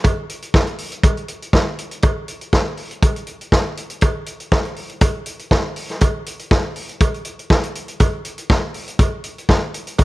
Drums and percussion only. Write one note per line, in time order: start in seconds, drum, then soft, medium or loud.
0.04 kick medium
0.04 closed hi-hat medium
0.04 cowbell medium
0.30 closed hi-hat medium
0.42 closed hi-hat soft
0.54 kick loud
0.54 snare medium
0.54 cowbell medium
0.67 closed hi-hat soft
0.78 open hi-hat medium
0.92 closed hi-hat soft
1.03 kick loud
1.03 closed hi-hat medium
1.03 cowbell medium
1.17 closed hi-hat soft
1.28 closed hi-hat medium
1.42 closed hi-hat soft
1.53 kick medium
1.53 snare loud
1.53 cowbell medium
1.79 closed hi-hat medium
1.91 closed hi-hat soft
2.02 kick loud
2.02 closed hi-hat medium
2.02 cowbell medium
2.28 closed hi-hat medium
2.41 closed hi-hat soft
2.53 kick medium
2.53 snare medium
2.53 cowbell medium
2.77 open hi-hat soft
2.91 closed hi-hat soft
3.03 kick loud
3.03 closed hi-hat medium
3.03 cowbell medium
3.16 closed hi-hat soft
3.27 closed hi-hat medium
3.41 closed hi-hat soft
3.52 kick medium
3.52 snare medium
3.52 cowbell medium
3.77 closed hi-hat medium
3.90 closed hi-hat soft
4.01 kick loud
4.01 closed hi-hat medium
4.01 cowbell medium
4.26 closed hi-hat medium
4.40 closed hi-hat soft
4.52 kick loud
4.52 snare medium
4.52 cowbell medium
4.65 closed hi-hat soft
4.76 open hi-hat medium
4.89 closed hi-hat soft
5.01 kick loud
5.01 closed hi-hat medium
5.01 cowbell medium
5.26 closed hi-hat medium
5.39 closed hi-hat soft
5.51 kick medium
5.51 snare medium
5.51 cowbell medium
5.76 open hi-hat medium
5.89 snare soft
5.89 closed hi-hat soft
6.01 kick loud
6.01 closed hi-hat medium
6.01 cowbell medium
6.26 closed hi-hat medium
6.39 closed hi-hat soft
6.51 kick loud
6.51 snare medium
6.51 cowbell medium
6.76 open hi-hat medium
6.89 closed hi-hat soft
7.01 kick loud
7.01 closed hi-hat medium
7.01 cowbell medium
7.14 closed hi-hat soft
7.25 closed hi-hat medium
7.39 closed hi-hat soft
7.50 kick loud
7.50 snare medium
7.50 cowbell medium
7.63 closed hi-hat soft
7.75 closed hi-hat medium
7.88 closed hi-hat soft
8.00 kick medium
8.00 closed hi-hat medium
8.00 cowbell medium
8.25 closed hi-hat medium
8.38 closed hi-hat soft
8.50 kick loud
8.50 snare medium
8.50 cowbell medium
8.74 open hi-hat medium
8.88 closed hi-hat soft
8.99 kick loud
8.99 closed hi-hat medium
8.99 cowbell medium
9.24 closed hi-hat medium
9.38 closed hi-hat soft
9.49 kick medium
9.49 snare medium
9.49 cowbell medium
9.74 closed hi-hat medium
9.87 closed hi-hat soft
9.98 kick medium
9.98 closed hi-hat medium
9.98 cowbell medium